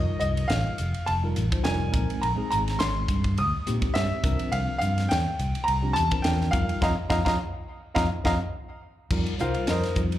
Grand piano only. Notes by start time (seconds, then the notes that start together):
Already playing: D#5
0.20 D#5
0.48 F5
1.06 A5
1.64 G#5
2.21 A#5
2.50 A#5
2.79 C6
3.38 D#6
3.94 E5
4.52 F5
4.78 F5
5.09 G5
5.64 A#5
5.93 A5
6.22 G5
6.51 F5
6.82 D#5 F5 A#5
7.10 D#5 F5 A#5
7.25 D#5 F5 A#5
7.95 D#5 F5 A#5
8.25 D#5 F5 A#5
9.40 F4 A#4 C5 F5
9.70 D#4 A#4 C5 D#5